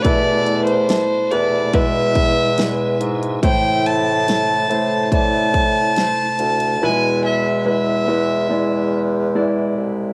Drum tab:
HH |x-xxx-x-x-x-x-xx|x-x-x-x-x-x-x-xx|----------------|
SD |----o-------o---|----o-------o---|----------------|
BD |o-------o-o-----|o-------o-o-----|----------------|